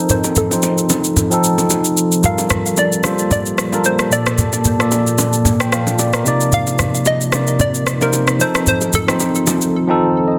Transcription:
Already playing: tine electric piano F3 C4 D#4 A4, ambient pad F3 C4 D#4 A4
0.09 synth pluck C5, low conga, shaker
0.24 high bongo, shaker
0.36 synth pluck A4, low conga, shaker
0.50 tine electric piano F3 C4 D#4 C5, low bongo, shaker
0.63 high bongo, shaker
0.78 shaker
0.90 low bongo, shaker
1.04 shaker
1.16 low bongo, low conga, shaker
1.30 tine electric piano F3 C4 D#4 A4, shaker
1.44 shaker
1.58 low bongo, shaker
1.70 high bongo, shaker
1.85 shaker
1.97 shaker
2.12 shaker
2.22 tine electric piano G3 F4 A4 A#4, ambient pad A#3 G4 A5, synth pluck F5, low conga, shaker
2.38 high bongo, shaker
2.50 cross-stick, low conga, shaker
2.66 shaker
2.77 synth pluck D5, high bongo, shaker
2.92 shaker
3.03 tine electric piano G3 F4 A4 C5, cross-stick, high bongo, low bongo, shaker
3.19 shaker
3.31 synth pluck D5, low bongo, low conga, shaker
3.46 shaker
3.58 cross-stick, shaker
3.71 tine electric piano G3 F4 A4 A#4, low bongo, shaker
3.85 synth pluck C5, high bongo, shaker
3.99 cross-stick, shaker
4.10 tine electric piano A#2 A#3 A4 D5, ambient pad F3 F4, synth pluck D5, shaker
4.26 cross-stick, shaker
4.38 low conga, shaker
4.53 high bongo, shaker
4.65 low conga, shaker
4.78 tine electric piano A#2 A#3 A4 D5, cross-stick, shaker
4.91 high bongo, shaker
5.07 shaker
5.18 high bongo, low bongo, shaker
5.33 shaker
5.45 low bongo, low conga, shaker
5.60 tine electric piano G5, cross-stick, shaker
5.72 tine electric piano F5, cross-stick, shaker
5.87 low bongo, shaker
5.99 tine electric piano D5, high bongo, shaker
6.13 tine electric piano A#4, cross-stick, shaker
6.24 tine electric piano C3 A#3 D#4 D5, ambient pad C4 D#4 A#4, shaker
6.41 shaker
6.52 synth pluck F5, low conga, shaker
6.67 high bongo, shaker
6.79 cross-stick, low conga, shaker
6.95 shaker
7.06 synth pluck D#5, high bongo, shaker
7.21 shaker
7.31 tine electric piano C3 A#3 D#4 D5, cross-stick, high bongo, low bongo, shaker
7.47 shaker
7.59 synth pluck D5, low bongo, low conga, shaker
7.75 shaker
7.87 cross-stick, shaker
8.00 tine electric piano C3 A#3 D#4 C5, synth pluck A#4, low bongo, shaker
8.13 high bongo, shaker
8.28 cross-stick, shaker
8.39 ambient pad D#3 F4 A4, tine electric piano F3 C4 D#4 A4, synth pluck C5, shaker
8.55 cross-stick, shaker
8.67 synth pluck C5, low conga, shaker
8.81 high bongo, shaker
8.93 synth pluck A4, low conga, shaker
9.07 tine electric piano F3 C4 D#4 C5, cross-stick, low bongo, shaker
9.20 high bongo, shaker
9.35 shaker
9.47 high bongo, low bongo, shaker
9.61 shaker
9.87 tine electric piano F3 C4 D#4 A4
10.28 tine electric piano D#5

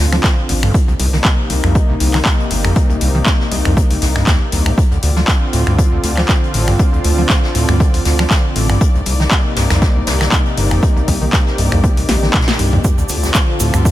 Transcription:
Already playing: analog synth pad D3 C4 F4, string section A4 D5
0.00 analog synth bass D2
0.12 acid bass F3, finger snap, snare
0.24 kick, snare, clap, closed hi-hat
0.49 analog synth bass A1, acid bass D2, closed hi-hat, open hi-hat
0.63 acid bass G2, finger snap
0.74 analog synth pad C3 A#3 D#4, string section C4, kick, closed hi-hat
0.88 acid bass C2, closed hi-hat
0.94 string section G4
0.99 acid bass C2, analog synth bass C2, closed hi-hat, open hi-hat
1.13 acid bass D#3, snare
1.25 kick, snare, clap, closed hi-hat
1.50 acid bass C2, analog synth bass C2, closed hi-hat, open hi-hat
1.64 analog synth bass C2, acid bass F2, finger snap
1.75 kick, closed hi-hat
1.89 acid bass C2
2.00 acid bass C2, analog synth bass C2, closed hi-hat, open hi-hat
2.14 acid bass D#3, finger snap, snare, clap
2.25 kick, snare, clap, closed hi-hat
2.40 closed hi-hat
2.51 analog synth bass G1, acid bass C2, closed hi-hat, open hi-hat
2.64 acid bass F2, finger snap, closed hi-hat
2.75 kick, closed hi-hat
2.90 acid bass C2, closed hi-hat
3.01 acid bass C2, analog synth bass C2, closed hi-hat, open hi-hat
3.15 acid bass D#3
3.26 kick, snare, clap, closed hi-hat
3.40 snare
3.51 acid bass C2, analog synth bass C2, closed hi-hat, open hi-hat
3.65 analog synth bass C2, acid bass F2, finger snap
3.77 kick, closed hi-hat
3.90 acid bass C2, open hi-hat
4.02 acid bass C2, analog synth bass C2, snare, closed hi-hat, open hi-hat
4.16 acid bass G2, finger snap, snare
4.27 acid bass D#2, kick, snare, clap, closed hi-hat
4.52 analog synth bass C2, acid bass D#2, closed hi-hat, open hi-hat
4.66 acid bass A#2, finger snap
4.78 analog synth pad D3 C4 F4, kick, closed hi-hat
4.91 acid bass D2, closed hi-hat
5.03 acid bass D2, analog synth bass D2, closed hi-hat, open hi-hat
5.16 acid bass F3, snare
5.28 string section A4, kick, snare, clap, closed hi-hat
5.53 analog synth bass D2, acid bass A2, closed hi-hat, open hi-hat
5.67 analog synth bass D2, acid bass G2, finger snap
5.78 kick, closed hi-hat
5.92 acid bass D2
6.04 acid bass D2, analog synth bass D2, closed hi-hat, open hi-hat
6.17 acid bass F3, finger snap, snare, clap
6.29 kick, snare, clap, closed hi-hat
6.44 closed hi-hat
6.54 analog synth bass A1, acid bass A2, closed hi-hat, open hi-hat
6.68 acid bass G2, finger snap, closed hi-hat
6.79 kick, closed hi-hat
6.93 acid bass D2, closed hi-hat
7.04 acid bass D2, analog synth bass D2, closed hi-hat, open hi-hat
7.18 acid bass F3
7.29 kick, snare, clap, closed hi-hat
7.43 snare
7.55 analog synth bass D2, acid bass A2, closed hi-hat, open hi-hat
7.69 analog synth bass D2, acid bass G2, finger snap
7.80 kick, closed hi-hat
7.94 acid bass D2, open hi-hat
8.05 acid bass D2, analog synth bass D2, snare, closed hi-hat, open hi-hat
8.18 acid bass F3, finger snap, snare
8.31 kick, snare, clap, closed hi-hat
8.56 analog synth bass A1, acid bass A2, closed hi-hat, open hi-hat
8.70 acid bass G2, finger snap
8.81 analog synth pad C3 A#3 D#4, string section C4, kick, closed hi-hat
8.95 acid bass C2, closed hi-hat
9.06 acid bass C2, analog synth bass C2, closed hi-hat, open hi-hat
9.20 acid bass D#3, snare
9.31 kick, snare, clap, closed hi-hat
9.45 string section G4
9.57 analog synth bass C2, acid bass G2, snare, closed hi-hat, open hi-hat
9.70 analog synth bass C2, acid bass F2, finger snap, snare, closed hi-hat
9.82 kick, snare, closed hi-hat
9.96 acid bass C2
10.07 acid bass C2, analog synth bass C2, snare, closed hi-hat, open hi-hat
10.21 acid bass D#3, finger snap, snare, clap, closed hi-hat
10.32 kick, snare, clap, closed hi-hat
10.45 closed hi-hat
10.57 analog synth bass G1, acid bass G2, closed hi-hat, open hi-hat
10.71 acid bass F2, finger snap, closed hi-hat
10.83 kick, closed hi-hat
10.96 acid bass C2, closed hi-hat
11.08 acid bass C2, analog synth bass C2, kick, closed hi-hat, open hi-hat
11.22 acid bass D#3
11.33 kick, snare, clap, closed hi-hat
11.47 snare
11.58 analog synth bass C2, acid bass G2, closed hi-hat, open hi-hat
11.72 analog synth bass C2, acid bass F2, finger snap
11.84 kick, closed hi-hat
11.97 acid bass C2, open hi-hat
12.08 analog synth bass A#1, acid bass C2, snare, closed hi-hat, open hi-hat
12.22 acid bass D#3, snare
12.34 kick, snare, clap, closed hi-hat, mid tom
12.41 snare, closed hi-hat
12.48 snare, closed hi-hat
12.53 snare, closed hi-hat
12.59 analog synth bass C2, acid bass G2, closed hi-hat, open hi-hat
12.73 acid bass F2, mid tom
12.84 analog synth pad D3 C4 F4, kick, closed hi-hat, shaker
12.94 string section A4
12.98 acid bass D2, closed hi-hat, shaker
13.09 acid bass D2, analog synth bass D2, closed hi-hat, open hi-hat, shaker
13.23 acid bass C2, snare, shaker
13.34 kick, snare, clap, closed hi-hat, shaker
13.60 analog synth bass D2, acid bass A2, closed hi-hat, open hi-hat, shaker
13.74 analog synth bass D2, acid bass G2, finger snap, shaker
13.85 kick, closed hi-hat, shaker

